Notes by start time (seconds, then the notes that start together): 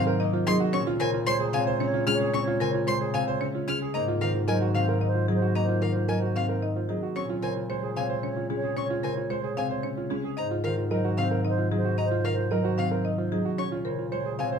Already playing: G#2 C3 D#3 F#3 G#3 A#3 C4 F5
0.04 A#4 C5
0.20 A#3 D#4 D#5
0.32 F4 C5
0.47 F#3 D#4 G#4 C6
0.60 F#4
0.73 A#2 C4 C#4 C#5 C#6
0.87 F4
1.00 C#3 A#4 C5 C#5 G#5
1.14 F4
1.27 G#3 C5 C#5 C6
1.40 G#4
1.53 C3 C4 F5 G#5
1.58 C#5
1.67 C5
1.80 C4 C#4 C#5
1.85 C#5
1.94 F4
2.07 G#3 C#4 G#4 F6
2.13 C#5
2.20 G#4
2.34 C4 C#4 C#5 C#6
2.42 C#5
2.47 F4
2.60 C#3 A#4 C5 G#5
2.69 C#5
2.74 F4
2.87 G#3 C5 C#5 C6
2.97 G#4 C#5
3.14 C3 C4 F5 G#5
3.25 C5 C#5
3.41 C4 C#4 C#5
3.54 F4 C#5
3.68 G#3 C#4 G#4 F6
3.82 G#4
3.94 G#2 A#3 D#4 C5 D#5 A#5
4.08 F4
4.21 D#3 A#4 C5 F5
4.35 F4
4.48 F#3 A#4 C5 D#5 G#5
4.62 F#4
4.75 C3 C4 F5
4.79 C5
4.89 A#4
5.01 D#4 D#5
5.07 C5
5.15 F4
5.28 F#3 D#4 G#4
5.35 C5
5.42 F#4
5.55 A#3 D#4 D#5 A#5
5.63 C5
5.69 F4
5.82 D#3 A#4 F5
5.91 C5
5.95 F4
6.08 F#3 A#4 D#5 G#5
6.19 F#4 C5
6.36 C3 C4 F5
6.46 A#4 C5
6.62 D#4 D#5
6.75 F4 C5
6.89 F#3 D#4 G#4
7.03 F#4
7.16 A#2 C4 C#4 C#5 C#6
7.29 F4
7.43 C#3 A#4 C5 C#5 G#5
7.56 F4
7.69 G#3 C5 C#5
7.83 G#4
7.96 C3 C4 C#5 F5 G#5
8.10 C5
8.23 C#4 C#5
8.28 C#5
8.36 F4
8.50 G#3 C#4 G#4
8.56 C#5
8.63 G#4
8.77 C4 C#4 C#5 C#6
8.84 C#5
8.90 F4
9.03 C#3 A#4 C5 G#5
9.12 C#5
9.17 F4
9.30 G#3 C5 C#5
9.40 C#5
9.44 G#4
9.57 C3 C4 F5 G#5
9.68 C5 C#5
9.83 C#4 C#5
9.96 F4 C#5
10.10 G#3 C#4 G#4
10.24 G#4
10.37 G#2 D#4 C5 D#5 A#5
10.51 F4
10.64 D#3 A#4 C5 F5
10.78 F4
10.91 F#3 A#4 C5 D#5
11.05 F#4
11.17 C3 C4 F5
11.21 C5
11.31 A#4
11.45 D#4 D#5
11.49 C5
11.58 F4
11.71 F#3 D#4 G#4
11.77 C5
11.85 F#4
11.98 D#4 D#5 A#5
12.05 C5
12.11 F4
12.25 D#3 A#4 F5
12.33 C5
12.38 F4
12.51 F#3 A#4 D#5
12.61 F#4 C5
12.78 C3 C4 F5
12.89 A#4 C5
13.05 D#4 D#5
13.17 F4 C5
13.32 F#3 D#4 G#4
13.45 F#4
13.58 A#2 C#4 C#5 C#6
13.72 F4
13.85 C#3 A#4 C5 C#5
13.99 F4
14.12 G#3 C5 C#5
14.25 G#4
14.39 C3 C4 C#5 F5 G#5
14.52 C5